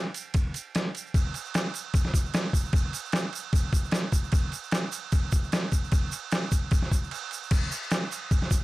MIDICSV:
0, 0, Header, 1, 2, 480
1, 0, Start_track
1, 0, Tempo, 398142
1, 1382, Time_signature, 4, 2, 24, 8
1, 10415, End_track
2, 0, Start_track
2, 0, Title_t, "Drums"
2, 174, Note_on_c, 9, 51, 70
2, 186, Note_on_c, 9, 82, 100
2, 295, Note_off_c, 9, 51, 0
2, 307, Note_off_c, 9, 82, 0
2, 408, Note_on_c, 9, 51, 104
2, 416, Note_on_c, 9, 36, 113
2, 430, Note_on_c, 9, 82, 72
2, 529, Note_off_c, 9, 51, 0
2, 537, Note_off_c, 9, 36, 0
2, 551, Note_off_c, 9, 82, 0
2, 654, Note_on_c, 9, 51, 66
2, 671, Note_on_c, 9, 82, 97
2, 774, Note_off_c, 9, 51, 0
2, 792, Note_off_c, 9, 82, 0
2, 902, Note_on_c, 9, 51, 101
2, 913, Note_on_c, 9, 38, 122
2, 915, Note_on_c, 9, 82, 72
2, 1022, Note_off_c, 9, 51, 0
2, 1033, Note_off_c, 9, 38, 0
2, 1036, Note_off_c, 9, 82, 0
2, 1142, Note_on_c, 9, 51, 74
2, 1166, Note_on_c, 9, 82, 102
2, 1263, Note_off_c, 9, 51, 0
2, 1287, Note_off_c, 9, 82, 0
2, 1379, Note_on_c, 9, 36, 127
2, 1381, Note_on_c, 9, 49, 89
2, 1390, Note_on_c, 9, 82, 76
2, 1499, Note_off_c, 9, 36, 0
2, 1501, Note_off_c, 9, 49, 0
2, 1510, Note_off_c, 9, 82, 0
2, 1617, Note_on_c, 9, 49, 68
2, 1631, Note_on_c, 9, 82, 93
2, 1738, Note_off_c, 9, 49, 0
2, 1750, Note_off_c, 9, 82, 0
2, 1750, Note_on_c, 9, 82, 32
2, 1860, Note_on_c, 9, 49, 93
2, 1870, Note_off_c, 9, 82, 0
2, 1870, Note_on_c, 9, 38, 118
2, 1871, Note_on_c, 9, 82, 76
2, 1980, Note_off_c, 9, 49, 0
2, 1991, Note_off_c, 9, 38, 0
2, 1992, Note_off_c, 9, 82, 0
2, 2095, Note_on_c, 9, 49, 62
2, 2110, Note_on_c, 9, 82, 99
2, 2216, Note_off_c, 9, 49, 0
2, 2230, Note_off_c, 9, 82, 0
2, 2335, Note_on_c, 9, 49, 88
2, 2339, Note_on_c, 9, 36, 112
2, 2352, Note_on_c, 9, 82, 85
2, 2455, Note_off_c, 9, 49, 0
2, 2459, Note_off_c, 9, 36, 0
2, 2470, Note_on_c, 9, 38, 37
2, 2473, Note_off_c, 9, 82, 0
2, 2577, Note_on_c, 9, 36, 82
2, 2583, Note_on_c, 9, 49, 62
2, 2591, Note_off_c, 9, 38, 0
2, 2591, Note_on_c, 9, 82, 108
2, 2698, Note_off_c, 9, 36, 0
2, 2704, Note_off_c, 9, 49, 0
2, 2712, Note_off_c, 9, 82, 0
2, 2714, Note_on_c, 9, 82, 29
2, 2817, Note_on_c, 9, 49, 100
2, 2827, Note_off_c, 9, 82, 0
2, 2827, Note_on_c, 9, 82, 81
2, 2828, Note_on_c, 9, 38, 126
2, 2938, Note_off_c, 9, 49, 0
2, 2948, Note_off_c, 9, 82, 0
2, 2949, Note_off_c, 9, 38, 0
2, 3054, Note_on_c, 9, 36, 85
2, 3061, Note_on_c, 9, 49, 72
2, 3071, Note_on_c, 9, 82, 104
2, 3175, Note_off_c, 9, 36, 0
2, 3181, Note_off_c, 9, 49, 0
2, 3192, Note_off_c, 9, 82, 0
2, 3194, Note_on_c, 9, 82, 35
2, 3289, Note_on_c, 9, 49, 97
2, 3293, Note_on_c, 9, 36, 127
2, 3314, Note_off_c, 9, 82, 0
2, 3323, Note_on_c, 9, 82, 74
2, 3410, Note_off_c, 9, 49, 0
2, 3413, Note_off_c, 9, 36, 0
2, 3444, Note_off_c, 9, 82, 0
2, 3534, Note_on_c, 9, 49, 73
2, 3548, Note_on_c, 9, 82, 115
2, 3655, Note_off_c, 9, 49, 0
2, 3668, Note_off_c, 9, 82, 0
2, 3679, Note_on_c, 9, 82, 31
2, 3766, Note_on_c, 9, 49, 84
2, 3776, Note_on_c, 9, 38, 125
2, 3800, Note_off_c, 9, 82, 0
2, 3803, Note_on_c, 9, 82, 76
2, 3886, Note_off_c, 9, 49, 0
2, 3897, Note_off_c, 9, 38, 0
2, 3924, Note_off_c, 9, 82, 0
2, 4011, Note_on_c, 9, 49, 66
2, 4041, Note_on_c, 9, 82, 108
2, 4132, Note_off_c, 9, 49, 0
2, 4162, Note_off_c, 9, 82, 0
2, 4253, Note_on_c, 9, 49, 93
2, 4255, Note_on_c, 9, 36, 125
2, 4282, Note_on_c, 9, 82, 85
2, 4374, Note_off_c, 9, 49, 0
2, 4376, Note_off_c, 9, 36, 0
2, 4403, Note_off_c, 9, 82, 0
2, 4490, Note_on_c, 9, 49, 62
2, 4494, Note_on_c, 9, 36, 77
2, 4511, Note_on_c, 9, 82, 104
2, 4611, Note_off_c, 9, 49, 0
2, 4614, Note_off_c, 9, 36, 0
2, 4631, Note_off_c, 9, 82, 0
2, 4634, Note_on_c, 9, 82, 30
2, 4719, Note_on_c, 9, 49, 89
2, 4730, Note_on_c, 9, 38, 120
2, 4753, Note_off_c, 9, 82, 0
2, 4753, Note_on_c, 9, 82, 90
2, 4840, Note_off_c, 9, 49, 0
2, 4850, Note_off_c, 9, 38, 0
2, 4874, Note_off_c, 9, 82, 0
2, 4967, Note_on_c, 9, 49, 68
2, 4973, Note_on_c, 9, 36, 80
2, 4980, Note_on_c, 9, 82, 107
2, 5087, Note_off_c, 9, 49, 0
2, 5093, Note_off_c, 9, 36, 0
2, 5101, Note_off_c, 9, 82, 0
2, 5109, Note_on_c, 9, 82, 33
2, 5205, Note_on_c, 9, 49, 93
2, 5216, Note_on_c, 9, 36, 127
2, 5226, Note_off_c, 9, 82, 0
2, 5226, Note_on_c, 9, 82, 83
2, 5325, Note_off_c, 9, 49, 0
2, 5337, Note_off_c, 9, 36, 0
2, 5346, Note_off_c, 9, 82, 0
2, 5448, Note_on_c, 9, 49, 59
2, 5464, Note_on_c, 9, 82, 104
2, 5569, Note_off_c, 9, 49, 0
2, 5584, Note_off_c, 9, 82, 0
2, 5587, Note_on_c, 9, 82, 33
2, 5684, Note_on_c, 9, 49, 83
2, 5695, Note_on_c, 9, 38, 121
2, 5708, Note_off_c, 9, 82, 0
2, 5712, Note_on_c, 9, 82, 74
2, 5804, Note_off_c, 9, 49, 0
2, 5815, Note_off_c, 9, 38, 0
2, 5833, Note_off_c, 9, 82, 0
2, 5934, Note_on_c, 9, 49, 64
2, 5934, Note_on_c, 9, 82, 100
2, 6055, Note_off_c, 9, 49, 0
2, 6055, Note_off_c, 9, 82, 0
2, 6173, Note_on_c, 9, 49, 87
2, 6174, Note_on_c, 9, 82, 80
2, 6179, Note_on_c, 9, 36, 116
2, 6294, Note_off_c, 9, 49, 0
2, 6295, Note_off_c, 9, 82, 0
2, 6300, Note_off_c, 9, 36, 0
2, 6412, Note_on_c, 9, 82, 106
2, 6413, Note_on_c, 9, 49, 58
2, 6420, Note_on_c, 9, 36, 83
2, 6533, Note_off_c, 9, 49, 0
2, 6533, Note_off_c, 9, 82, 0
2, 6541, Note_off_c, 9, 36, 0
2, 6552, Note_on_c, 9, 82, 29
2, 6658, Note_on_c, 9, 49, 92
2, 6662, Note_off_c, 9, 82, 0
2, 6662, Note_on_c, 9, 82, 80
2, 6668, Note_on_c, 9, 38, 123
2, 6778, Note_off_c, 9, 49, 0
2, 6783, Note_off_c, 9, 82, 0
2, 6789, Note_off_c, 9, 38, 0
2, 6891, Note_on_c, 9, 49, 70
2, 6898, Note_on_c, 9, 36, 87
2, 6906, Note_on_c, 9, 82, 102
2, 7012, Note_off_c, 9, 49, 0
2, 7019, Note_off_c, 9, 36, 0
2, 7026, Note_off_c, 9, 82, 0
2, 7039, Note_on_c, 9, 82, 33
2, 7132, Note_on_c, 9, 49, 97
2, 7140, Note_on_c, 9, 36, 125
2, 7148, Note_off_c, 9, 82, 0
2, 7148, Note_on_c, 9, 82, 83
2, 7253, Note_off_c, 9, 49, 0
2, 7260, Note_off_c, 9, 36, 0
2, 7268, Note_off_c, 9, 82, 0
2, 7376, Note_on_c, 9, 82, 106
2, 7386, Note_on_c, 9, 49, 69
2, 7497, Note_off_c, 9, 82, 0
2, 7506, Note_off_c, 9, 49, 0
2, 7612, Note_on_c, 9, 82, 80
2, 7614, Note_on_c, 9, 49, 102
2, 7625, Note_on_c, 9, 38, 114
2, 7732, Note_off_c, 9, 82, 0
2, 7735, Note_off_c, 9, 49, 0
2, 7746, Note_off_c, 9, 38, 0
2, 7858, Note_on_c, 9, 36, 85
2, 7858, Note_on_c, 9, 49, 66
2, 7860, Note_on_c, 9, 82, 98
2, 7978, Note_off_c, 9, 36, 0
2, 7978, Note_off_c, 9, 49, 0
2, 7981, Note_off_c, 9, 82, 0
2, 8089, Note_on_c, 9, 49, 90
2, 8097, Note_on_c, 9, 36, 124
2, 8109, Note_on_c, 9, 82, 78
2, 8210, Note_off_c, 9, 49, 0
2, 8218, Note_off_c, 9, 36, 0
2, 8228, Note_on_c, 9, 38, 34
2, 8230, Note_off_c, 9, 82, 0
2, 8337, Note_on_c, 9, 36, 74
2, 8338, Note_on_c, 9, 49, 59
2, 8348, Note_off_c, 9, 38, 0
2, 8349, Note_on_c, 9, 82, 97
2, 8458, Note_off_c, 9, 36, 0
2, 8458, Note_off_c, 9, 49, 0
2, 8469, Note_off_c, 9, 82, 0
2, 8484, Note_on_c, 9, 82, 31
2, 8575, Note_on_c, 9, 49, 93
2, 8604, Note_off_c, 9, 82, 0
2, 8609, Note_on_c, 9, 82, 70
2, 8696, Note_off_c, 9, 49, 0
2, 8730, Note_off_c, 9, 82, 0
2, 8812, Note_on_c, 9, 49, 65
2, 8835, Note_on_c, 9, 82, 95
2, 8933, Note_off_c, 9, 49, 0
2, 8956, Note_off_c, 9, 82, 0
2, 8959, Note_on_c, 9, 82, 31
2, 9053, Note_on_c, 9, 49, 97
2, 9053, Note_on_c, 9, 57, 127
2, 9057, Note_on_c, 9, 36, 127
2, 9076, Note_off_c, 9, 82, 0
2, 9076, Note_on_c, 9, 82, 85
2, 9173, Note_off_c, 9, 49, 0
2, 9173, Note_off_c, 9, 57, 0
2, 9177, Note_off_c, 9, 36, 0
2, 9197, Note_off_c, 9, 82, 0
2, 9302, Note_on_c, 9, 82, 113
2, 9307, Note_on_c, 9, 49, 61
2, 9423, Note_off_c, 9, 82, 0
2, 9428, Note_off_c, 9, 49, 0
2, 9437, Note_on_c, 9, 82, 31
2, 9532, Note_on_c, 9, 49, 87
2, 9542, Note_off_c, 9, 82, 0
2, 9542, Note_on_c, 9, 82, 79
2, 9543, Note_on_c, 9, 38, 117
2, 9653, Note_off_c, 9, 49, 0
2, 9663, Note_off_c, 9, 82, 0
2, 9664, Note_off_c, 9, 38, 0
2, 9790, Note_on_c, 9, 49, 67
2, 9790, Note_on_c, 9, 82, 96
2, 9910, Note_off_c, 9, 82, 0
2, 9911, Note_off_c, 9, 49, 0
2, 10020, Note_on_c, 9, 36, 124
2, 10023, Note_on_c, 9, 49, 95
2, 10027, Note_on_c, 9, 82, 80
2, 10141, Note_off_c, 9, 36, 0
2, 10144, Note_off_c, 9, 49, 0
2, 10147, Note_off_c, 9, 82, 0
2, 10155, Note_on_c, 9, 38, 38
2, 10252, Note_on_c, 9, 49, 60
2, 10259, Note_on_c, 9, 36, 78
2, 10266, Note_on_c, 9, 82, 104
2, 10275, Note_off_c, 9, 38, 0
2, 10373, Note_off_c, 9, 49, 0
2, 10379, Note_off_c, 9, 36, 0
2, 10387, Note_off_c, 9, 82, 0
2, 10415, End_track
0, 0, End_of_file